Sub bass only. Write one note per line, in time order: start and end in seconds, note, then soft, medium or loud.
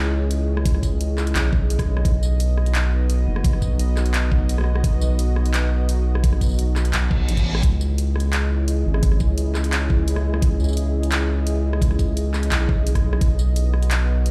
0.00 0.82 C#2 medium
0.83 1.35 C#2 medium
1.36 1.87 B1 medium
1.88 2.04 B1 medium
2.05 3.26 B1 loud
3.27 3.64 F#1 loud
3.62 5.01 B1 medium
5.02 6.40 B1 medium
6.41 6.93 B1 medium
6.94 7.30 B1 medium
7.29 7.62 A1 medium
7.63 8.84 C#2 loud
8.86 9.22 G#1 loud
9.20 10.59 C#2 medium
10.60 11.98 C#2 medium
11.99 12.51 C#2 medium
12.52 13.03 B1 medium
13.04 13.20 B1 medium
13.21 14.31 B1 loud